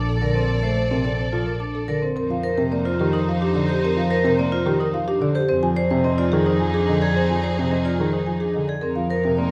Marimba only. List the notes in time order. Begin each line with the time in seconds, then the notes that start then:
Already playing: A5
0.09 A4
0.21 D5
0.35 C5
0.48 A#4
0.63 A5
0.77 C5
0.92 A#4
1.05 D5
1.19 C5
1.33 A4
1.46 A#4
1.60 A5
1.75 A4
1.89 D5
2.03 C5
2.17 A#4
2.31 F5
2.44 C5
2.58 A#4
2.72 D5
2.85 C5
3.00 G4
3.14 A#4
3.29 F5
3.42 G4
3.55 D5
3.69 C5
3.85 A#4
3.98 F5
4.11 C5
4.25 A#4
4.39 D5
4.53 C5
4.67 G4
4.81 A#4
4.94 F5
5.08 G4
5.22 D5
5.35 C5
5.49 C5
5.63 G#5
5.76 D5
5.91 C5
6.04 D#5
6.18 D5
6.32 G#4
6.46 C5
6.59 G#5
6.74 G#4
6.88 D#5
7.01 D5
7.16 C5
7.30 G#5
7.43 D5
7.58 C5
7.71 D#5
7.85 D5
7.98 G#4
8.12 C5
8.26 G#5
8.40 G#4
8.54 D#5
8.68 D5
8.81 A#4
8.96 F5
9.10 C5
9.24 A#4
9.37 D5